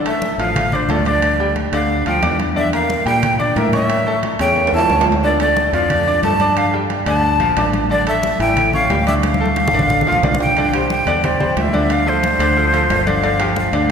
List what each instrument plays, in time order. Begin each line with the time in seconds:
0.05 grand piano A3 A4 A5, flute E5, high conga, high timbale
0.22 high conga, low timbale
0.38 fingered electric bass A1, grand piano F3 F4 F5, flute F5, high conga, high timbale
0.56 high conga, low conga, high timbale
0.72 grand piano D4 D5 D6, flute C5, high conga, low conga
0.88 fingered electric bass D2, grand piano A3 A4 A5, flute D5, high conga, high timbale, low timbale
1.05 grand piano D4 D5 D6, flute D5, high conga, high timbale
1.22 high conga, high timbale
1.39 grand piano G3 G4 G5, high conga
1.56 high conga, high timbale, low timbale
1.72 fingered electric bass D2, grand piano D3 D4 D5, flute F5, high conga, high timbale
1.90 high conga
2.06 fingered electric bass D2, grand piano F3 F4 F5, flute G5, high conga, high timbale
2.22 fingered electric bass E2, grand piano D4 D5 D6, high conga, high timbale, low timbale
2.39 high conga, high timbale
2.56 grand piano D3 D4 D5, flute E5, high conga
2.73 grand piano A#3 A#4 A#5, flute F5, high conga, high timbale
2.90 high conga, low timbale
3.05 fingered electric bass A#2, grand piano G3 G4 G5, flute G5, high conga, high timbale
3.23 high conga, low conga, high timbale
3.39 grand piano D4 D5 D6, flute D5, high conga, low conga
3.56 fingered electric bass A2, grand piano A#3 A#4 A#5, flute E5, high conga, high timbale, low timbale
3.73 grand piano C#4 C#5 C#6, flute E5, high conga, high timbale
3.90 high conga, high timbale
4.06 grand piano A3 A4 A5, high conga
4.23 high conga, high timbale, low timbale
4.39 fingered electric bass E2, grand piano C#3 C#4 C#5, flute G5, high conga, high timbale
4.56 high conga, high timbale
4.67 high timbale
4.73 fingered electric bass E2, grand piano E3 E4 E5, flute A5, high conga
4.78 low timbale
4.90 fingered electric bass D2, grand piano C#4 C#5 C#6, high conga, low timbale
5.01 low timbale
5.07 high conga
5.12 low timbale
5.23 grand piano D3 D4 D5, flute D5, high conga
5.40 grand piano A3 A4 A5, flute D5, high conga, high timbale
5.56 high conga, low timbale
5.73 fingered electric bass F2, grand piano F3 F4 F5, flute D5, high conga, high timbale
5.90 high conga, low conga, high timbale
6.07 grand piano D4 D5 D6, high conga
6.23 fingered electric bass G2, grand piano A3 A4 A5, flute A5, high conga, high timbale, low timbale
6.40 grand piano D4 D5 D6, high conga, high timbale
6.57 flute F5, high conga, high timbale
6.73 grand piano G3 G4 G5, high conga
6.90 high conga, high timbale, low timbale
7.06 fingered electric bass D2, grand piano D3 D4 D5, flute A5, high conga, high timbale
7.23 high conga
7.39 fingered electric bass A#1, grand piano F3 F4 F5, high conga, high timbale
7.56 fingered electric bass A1, grand piano D4 D5 D6, high conga, high timbale, low timbale
7.73 high conga, high timbale
7.90 grand piano D3 D4 D5, flute D5, high conga
8.07 grand piano A3 A4 A5, flute E5, high conga, high timbale
8.23 high conga, low timbale
8.39 fingered electric bass A1, grand piano E3 E4 E5, flute G5, high conga, high timbale
8.57 high conga, low conga, high timbale
8.73 grand piano C#4 C#5 C#6, flute F5, high conga, low conga
8.90 fingered electric bass D2, grand piano G3 G4 G5, high conga, high timbale, low timbale
9.07 grand piano D4 D5 D6, flute E5, high conga, high timbale
9.23 flute F5, high conga, high timbale
9.34 high conga
9.40 grand piano A3 A4 A5
9.46 high conga
9.56 high conga, high timbale, low timbale
9.68 low conga
9.73 fingered electric bass A1, grand piano D3 D4 D5, high timbale
9.79 low conga
9.90 low conga
10.01 low conga
10.06 fingered electric bass A#1, grand piano F3 F4 F5, low timbale
10.12 low conga
10.23 fingered electric bass C2, grand piano D4 D5 D6, low conga, low timbale
10.34 low conga
10.40 flute G5, low timbale
10.46 low conga
10.57 grand piano D3 D4 D5, high conga, high timbale
10.74 grand piano G3 G4 C5, high conga, high timbale
10.90 flute G5, high conga, low timbale
11.06 fingered electric bass E2, grand piano D3 D4 D5, high conga, high timbale
11.24 grand piano G3 G4 C5, flute D5, high conga, low conga, high timbale
11.40 grand piano G3 G4 C5, high conga, low conga
11.56 fingered electric bass D2, flute E5, high conga, high timbale, low timbale
11.73 grand piano D3 D4 D5, high conga
11.90 flute F5, high conga, high timbale
12.07 grand piano F3 F4 A4, flute C5, high conga
12.23 high conga, high timbale, low timbale
12.39 fingered electric bass D2, grand piano D3 D4 D5, high timbale
12.57 grand piano F3 F4 A4, high conga
12.73 grand piano F3 F4 A4, high conga, high timbale
12.89 fingered electric bass G1, high conga, high timbale, low timbale
13.06 grand piano D3 D4 D5, flute F5, high conga
13.23 grand piano D3 D4 D5, high conga, high timbale
13.40 grand piano F3 F4 G4, high conga, high timbale
13.56 flute F5, high conga, low timbale
13.73 fingered electric bass D2, grand piano D3 D4 D5, high timbale